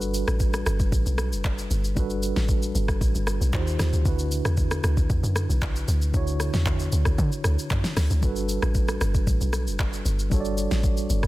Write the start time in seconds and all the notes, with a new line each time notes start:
Already playing: G1 G3 D4 F#4 A4 B4
0.01 shaker
0.14 shaker
0.28 A1, cross-stick, shaker
0.40 kick, shaker
0.54 cross-stick, shaker
0.66 G1, cross-stick, shaker
0.80 kick, shaker
0.92 A1, kick, shaker
1.06 B1, shaker
1.18 cross-stick, shaker
1.32 F#1, shaker
1.44 kick, clap, shaker
1.58 shaker
1.71 G1, shaker
1.84 shaker
1.95 G1 G3 D4 F#4 A4, kick, shaker
2.00 B4
2.10 shaker
2.23 shaker
2.36 A1, snare, shaker
2.48 kick, shaker
2.62 shaker
2.75 G1, shaker
2.88 kick, cross-stick, shaker
3.01 A1, kick, shaker
3.15 G1, shaker
3.27 cross-stick, shaker
3.41 B1, shaker
3.53 D#2 D#3 D#4 F4 F#4 C5, kick, clap, shaker
3.61 G4
3.67 shaker
3.79 D#2, cross-stick, snare, shaker
3.93 D2, shaker
4.04 D2 D3 D4 E4 F#4, kick, shaker
4.08 B4
4.19 shaker
4.32 shaker
4.45 E2, cross-stick, shaker
4.57 kick, shaker
4.71 cross-stick, shaker
4.84 D2, cross-stick, shaker
4.97 kick, shaker
5.10 E2, kick, shaker
5.23 F#2, shaker
5.36 cross-stick, shaker
5.49 B1, shaker
5.62 kick, clap, shaker
5.76 shaker
5.88 D2, shaker
6.02 shaker
6.12 D2 D3 D4 E4 F#4, kick, shaker
6.17 C#5
6.27 shaker
6.40 cross-stick, shaker
6.54 E2, snare, shaker
6.66 kick, clap, shaker
6.79 shaker
6.92 D2, shaker
7.05 kick, cross-stick, shaker
7.18 D3, kick, shaker
7.32 shaker
7.44 D2, cross-stick, shaker
7.59 shaker
7.70 F#2, kick, clap, shaker
7.84 snare, shaker
7.97 D2, cross-stick, snare, open hi-hat, shaker
8.10 D2, shaker
8.21 G1 G3 D4 F#4 A4, kick, shaker
8.25 B4
8.36 shaker
8.49 shaker
8.62 A1, cross-stick, shaker
8.75 kick, shaker
8.88 cross-stick, shaker
9.01 G1, cross-stick, shaker
9.15 kick, shaker
9.27 A1, kick, shaker
9.41 B1, shaker
9.53 cross-stick, shaker
9.67 F#1, shaker
9.79 kick, clap, shaker
9.93 shaker
10.05 G1, shaker
10.19 shaker
10.30 G1 G3 D4 F#4 A4, kick, shaker
10.34 C#5
10.40 D5
10.45 shaker
10.58 shaker
10.71 A1, snare, shaker
10.83 kick, shaker
10.97 shaker
11.10 G1, shaker
11.23 kick, cross-stick, shaker